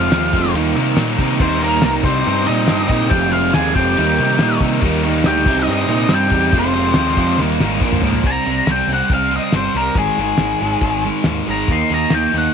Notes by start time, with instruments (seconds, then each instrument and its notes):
Already playing: distorted electric guitar F2 C3 F3, overdriven electric guitar F3 G#3 C4 F4, lead electric guitar F4 F5
0.11 picked electric bass D#2, distorted electric guitar F2 C3, overdriven electric guitar F3 G#3 C4 F4, snare, ride
0.33 picked electric bass F1, distorted electric guitar F2 C3, overdriven electric guitar F3 G#3 C4 F4, kick, ride
0.45 snare
0.54 picked electric bass D#2, overdriven electric guitar D#3 G3 A#3 D#4, ride
0.75 picked electric bass C3, distorted electric guitar D#3, overdriven electric guitar G3 A#3 D#4, ride
0.97 picked electric bass A#2, overdriven electric guitar D#3 G3 A#3 D#4, snare, ride
1.18 picked electric bass C3, distorted electric guitar D#3, overdriven electric guitar A#3 D#4, kick, ride
1.22 overdriven electric guitar G3
1.39 picked electric bass D#2, overdriven electric guitar D#3 G3 A#3 D#4, lead electric guitar C4 C5, kick, crash
1.59 distorted electric guitar D#3, lead electric guitar A#3, overdriven electric guitar A#3 D#4, ride
1.64 overdriven electric guitar G3, lead electric guitar A#4
1.80 picked electric bass C2, overdriven electric guitar D#3 G3, lead electric guitar A#3, snare, ride
1.85 overdriven electric guitar A#3 D#4, lead electric guitar A#4
2.00 picked electric bass C2, lead electric guitar C4, overdriven electric guitar D#4, kick, ride
2.04 overdriven electric guitar C3 G3 C4, lead electric guitar C5
2.24 picked electric bass G2, overdriven electric guitar C3 G3, ride
2.28 overdriven electric guitar C4 D#4
2.45 distorted electric guitar C3, lead electric guitar D#4 D#5, overdriven electric guitar D#4, ride
2.49 picked electric bass A#2, overdriven electric guitar G3 C4
2.67 picked electric bass G2, overdriven electric guitar C3 G3 C4 D#4, snare, ride
2.88 picked electric bass A#2, distorted electric guitar C3, overdriven electric guitar C4 D#4, lead electric guitar D#4 D#5, kick, ride
2.93 overdriven electric guitar G3
3.08 picked electric bass F1, overdriven electric guitar F3 G#3 C4 F4, lead electric guitar G4 G5, kick, ride
3.12 distorted electric guitar F2 C3
3.28 lead electric guitar F4 F5, overdriven electric guitar F4
3.33 distorted electric guitar F2 C3 F3, overdriven electric guitar G#3 C4, ride
3.51 distorted electric guitar F2 C3, overdriven electric guitar F3 G#3, lead electric guitar G#4 G#5, snare, ride
3.55 picked electric bass D#2, overdriven electric guitar C4 F4
3.74 picked electric bass F1, distorted electric guitar F2 C3, overdriven electric guitar F3 G#3 C4 F4, lead electric guitar G4 G5, kick, ride
3.96 picked electric bass D#2, overdriven electric guitar D#3 G3 A#3 D#4, ride
4.18 picked electric bass C3, distorted electric guitar D#3, overdriven electric guitar G3 A#3 D#4, ride
4.22 distorted electric guitar D#4
4.38 picked electric bass A#2, overdriven electric guitar D#3 G3 A#3 D#4, snare, ride
4.60 picked electric bass C3, distorted electric guitar D#3, overdriven electric guitar G3 A#3 D#4, kick, ride
4.81 picked electric bass D#2, overdriven electric guitar D#3 G3 A#3 D#4, kick, ride
5.03 distorted electric guitar D#3, overdriven electric guitar G3 A#3 D#4, ride
5.24 picked electric bass D2, overdriven electric guitar D#3 G3 A#3, lead electric guitar G4 G5, snare, ride
5.29 overdriven electric guitar D#4
5.45 picked electric bass C2, overdriven electric guitar C3 G3 C4 D#4, kick, crash
5.56 snare
5.60 lead electric guitar D#4 D#5
5.67 picked electric bass G2, overdriven electric guitar C3 G3 C4 D#4
5.71 lead electric guitar D#4 D#5
5.88 picked electric bass A#2, distorted electric guitar C3, overdriven electric guitar C4 D#4, ride
5.93 overdriven electric guitar G3
6.09 picked electric bass G2, overdriven electric guitar C3 G3 C4 D#4, snare, ride
6.14 lead electric guitar G4 G5
6.30 picked electric bass E2, distorted electric guitar C3, overdriven electric guitar G3 C4 D#4, kick, ride
6.52 picked electric bass F1, distorted electric guitar F2 C3, overdriven electric guitar F3 G#3 C4 F4, kick, ride
6.57 lead electric guitar C4 C5
6.73 distorted electric guitar F2 C3 F3, overdriven electric guitar G#3 C4 F4, ride
6.94 picked electric bass D#2, distorted electric guitar F2 C3, overdriven electric guitar F3 G#3 C4, snare, ride
6.99 overdriven electric guitar F4
7.17 picked electric bass F2, distorted electric guitar F2 C3, overdriven electric guitar F3 G#3 C4 F4, kick, ride
7.38 picked electric bass D#2, overdriven electric guitar D#3 G3 A#3, high tom
7.42 overdriven electric guitar D#4
7.60 picked electric bass G#1, distorted electric guitar D#3, overdriven electric guitar G3 A#3 D#4, snare
7.80 picked electric bass A#1, overdriven electric guitar A#2 D3 F3 A#3 D4, kick
7.92 mid tom
8.02 picked electric bass G#2, distorted electric guitar A#2, overdriven electric guitar F3 A#3 D4, floor tom
8.13 floor tom
8.23 picked electric bass C2, overdriven electric guitar C3 G3 C4, lead electric guitar A#5, kick, closed hi-hat
8.45 picked electric bass C2, overdriven electric guitar C3 G3 C4, closed hi-hat
8.67 picked electric bass C2, overdriven electric guitar C3 G3 C4, snare, closed hi-hat
8.71 lead electric guitar G5
8.87 picked electric bass C2, overdriven electric guitar C3 G3 C4, closed hi-hat
8.93 lead electric guitar F#5
9.10 picked electric bass C2, overdriven electric guitar C3 G3 C4, kick, closed hi-hat
9.14 lead electric guitar F5
9.31 overdriven electric guitar C3 G3 C4, closed hi-hat
9.36 lead electric guitar D#5
9.52 picked electric bass G1, overdriven electric guitar C3 G3 C4, lead electric guitar C5, snare, closed hi-hat
9.74 picked electric bass C2, overdriven electric guitar C3 G3 C4, lead electric guitar A#4, closed hi-hat
9.95 picked electric bass G#1, overdriven electric guitar G#2 D#3 G#3, lead electric guitar G#4, kick, closed hi-hat
10.16 picked electric bass G#1, overdriven electric guitar G#2 D#3 G#3, closed hi-hat
10.21 lead electric guitar G#4
10.38 picked electric bass G#1, overdriven electric guitar G#2 D#3 G#3, snare, closed hi-hat
10.59 picked electric bass G#1, overdriven electric guitar G#2 D#3 G#3, closed hi-hat
10.81 picked electric bass G#1, overdriven electric guitar G#2 D#3 G#3, kick, closed hi-hat
11.02 overdriven electric guitar G#2 D#3 G#3, closed hi-hat
11.24 picked electric bass D#2, overdriven electric guitar G#2 D#3 G#3, snare, closed hi-hat
11.47 picked electric bass G#1, overdriven electric guitar G#2 D#3 G#3, closed hi-hat
11.51 lead electric guitar A#5
11.68 picked electric bass D#2, overdriven electric guitar D#3 A#3 D#4, kick, closed hi-hat
11.72 lead electric guitar C6
11.90 picked electric bass D#2, overdriven electric guitar D#3 A#3 D#4, closed hi-hat
11.94 lead electric guitar A#5
12.10 picked electric bass D#2, overdriven electric guitar D#3 A#3, lead electric guitar G5, snare, closed hi-hat
12.15 overdriven electric guitar D#4
12.33 picked electric bass D#2, overdriven electric guitar D#3 A#3 D#4, closed hi-hat
12.38 lead electric guitar F#5